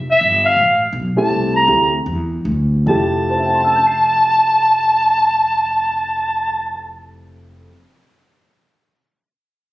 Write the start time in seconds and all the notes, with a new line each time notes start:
Already playing: F1
0.11 E5
0.21 G1
0.46 F5
0.57 A1
0.93 B1
1.16 A3 C4 E4 G4 A5, muted upright bass stroke
1.30 C2
1.56 A#5
1.68 D2 A3 C4 E4 G4
2.06 E2
2.45 D2
2.86 F1 F2 F3 A3 E4 G4 A5
3.30 C5
3.37 E5
3.46 G5
3.55 C6
3.64 E6
3.75 G6
3.87 C7